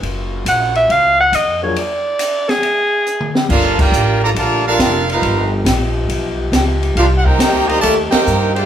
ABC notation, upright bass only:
X:1
M:4/4
L:1/8
Q:"Swing" 1/4=139
K:Gb
V:1 name="Upright bass" clef=bass
G,,,2 B,,,2 D,,2 F,,2 | z8 | [K:Gm] G,,,2 A,,,2 B,,,2 F,,,2 | G,,,2 ^A,,,2 =B,,,2 ^C,,2 |
C,,2 D,,2 E,, z G,,2 |]